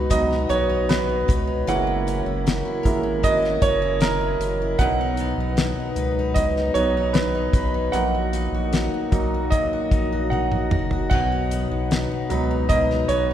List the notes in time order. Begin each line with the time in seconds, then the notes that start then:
Already playing: C#2 F#3 B3 D#4 F#4 B4 F#5
0.10 B2 F#3 B3 D#4 D#5, kick, closed hi-hat
0.31 D#4, snare
0.49 B1 B3 C#5, closed hi-hat
0.69 D#4
0.89 B3 B4, snare, closed hi-hat
1.09 D#4
1.28 C#2 B4, kick, closed hi-hat
1.47 D#4
1.67 F#1 F#3 G#3 A#3 C#4 E4 A#4 F#5, closed hi-hat
1.87 E4
2.07 C#4, closed hi-hat
2.26 F#1 E4
2.46 C#4, snare, closed hi-hat
2.65 E4
2.83 G#1 G#3 A#3 E4 A#4, kick, closed hi-hat
3.03 E4
3.23 F#3 D#5, kick, closed hi-hat
3.42 E4, snare
3.62 F#1 C#4 C#5, kick, closed hi-hat
3.82 E4
4.01 C#4 A#4, snare, closed hi-hat
4.21 E4
4.40 F#1 A#4, closed hi-hat
4.62 E4
4.78 B1 B2 F#3 B3 D#4 F#5, kick, closed hi-hat
5.01 D#4
5.17 B3, closed hi-hat
5.38 B1 D#4
5.57 B3, snare, closed hi-hat
5.80 D#4
5.96 C#2 B4, closed hi-hat
6.19 D#4
6.34 B2 D#5, kick, closed hi-hat
6.57 D#4, snare
6.74 B1 F#3 B3 D#4 C#5, closed hi-hat
6.97 D#4
7.13 B3 B4, snare, closed hi-hat
7.35 D#4
7.53 B1 B4, kick, closed hi-hat
7.74 D#4
7.92 A#1 A#2 F#3 A#3 D#4 F#5, closed hi-hat
8.15 F#4
8.33 D#4, closed hi-hat
8.52 A#1 F#4
8.73 D#4, snare, closed hi-hat
8.94 F#4
9.11 B1 F#3 A#3 D#4 A#4, kick, closed hi-hat
9.34 F#4
9.50 A#2 D#5, kick, closed hi-hat
9.73 F#4
9.91 A#1 D#4, kick, closed hi-hat
10.12 F#4
10.30 D#4 F#5, high tom
10.52 F#4, mid tom
10.71 F#1 A#4, mid tom
10.91 F#4, floor tom
11.10 B1 B2 B3 D#4 F#5, kick, splash
11.32 D#4
11.51 B3, closed hi-hat
11.71 B1 D#4
11.91 B3, snare, closed hi-hat
12.11 D#4
12.30 C#2 F#3 B3 D#4 B4, closed hi-hat
12.51 D#4
12.69 B2 D#5, kick, closed hi-hat
12.91 D#4, snare
13.08 B1 B3 C#5, closed hi-hat